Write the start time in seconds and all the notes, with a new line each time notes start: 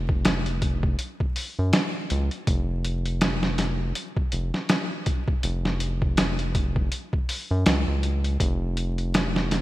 Already playing: F1
0.09 kick
0.25 snare, closed hi-hat
0.46 closed hi-hat
0.62 kick, closed hi-hat
0.83 kick
0.99 closed hi-hat
1.20 kick
1.36 open hi-hat
1.59 F#2
1.73 snare, closed hi-hat
2.10 C#2, closed hi-hat
2.31 closed hi-hat
2.47 F1, kick, closed hi-hat
2.84 closed hi-hat
3.05 closed hi-hat
3.21 snare, closed hi-hat
3.43 snare
3.58 snare, closed hi-hat
3.95 closed hi-hat
4.17 kick
4.32 F1, closed hi-hat
4.54 snare
4.69 snare, closed hi-hat
5.06 kick, closed hi-hat
5.28 kick
5.43 F1, closed hi-hat
5.65 snare
5.80 closed hi-hat
6.02 kick
6.17 snare, closed hi-hat
6.39 closed hi-hat
6.55 kick, closed hi-hat
6.76 kick
6.92 closed hi-hat
7.13 kick
7.29 open hi-hat
7.51 F#2
7.66 C#2, snare, closed hi-hat
7.88 C#2
8.03 closed hi-hat
8.24 closed hi-hat
8.40 F1, kick, closed hi-hat
8.77 closed hi-hat
8.98 closed hi-hat
9.14 snare, closed hi-hat
9.36 snare
9.51 snare, closed hi-hat